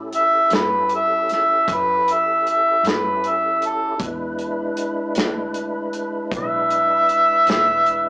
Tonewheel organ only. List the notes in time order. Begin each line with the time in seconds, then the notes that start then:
Already playing: C#4 E4 G4 A4
3.96 G#3 D4 E4 B4